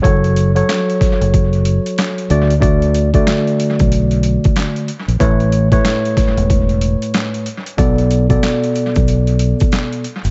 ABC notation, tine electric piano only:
X:1
M:4/4
L:1/16
Q:"Swing 16ths" 1/4=93
K:Dlyd
V:1 name="Tine electric piano"
[F,FAc]3 [F,FAc]8- [F,FAc]3 [D,A,Fd] z | [D,A,Fd]3 [D,A,Fd]8- [D,A,Fd]3 z2 | [A,,A,Bc]3 [A,,A,Bc]8- [A,,A,Bc]3 z2 | [B,,B,Ad]3 [B,,B,Ad]8- [B,,B,Ad]3 z2 |]